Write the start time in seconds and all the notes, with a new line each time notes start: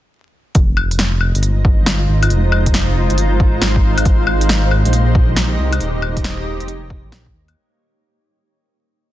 0.55 F1 G#3 D#4 F4 C5 D#5, kick, closed hi-hat
0.77 claves
0.91 closed hi-hat
0.99 snare, closed hi-hat
1.21 claves
1.35 G1, closed hi-hat
1.43 closed hi-hat
1.65 kick
1.86 snare, closed hi-hat
2.08 G#1
2.23 closed hi-hat, claves
2.30 F1 F5, closed hi-hat
2.52 claves
2.66 kick, closed hi-hat
2.74 snare, closed hi-hat
3.10 G1, closed hi-hat
3.18 closed hi-hat
3.40 G#1, kick
3.62 snare, closed hi-hat
3.76 kick
3.98 closed hi-hat, claves
4.05 G#1 D#4 G4 D#5, kick, closed hi-hat
4.27 claves
4.41 closed hi-hat
4.49 snare, closed hi-hat
4.71 claves
4.85 A#1, closed hi-hat
4.93 closed hi-hat
5.15 kick
5.37 snare, closed hi-hat
5.59 C2
5.73 closed hi-hat, claves
5.81 D#1 A#3 C#5, closed hi-hat
6.02 claves
6.17 kick, closed hi-hat
6.24 snare, closed hi-hat
6.60 F1, closed hi-hat
6.68 closed hi-hat
6.90 kick
7.04 A#1
7.12 snare, closed hi-hat
7.26 kick
7.34 D#2
7.48 closed hi-hat, claves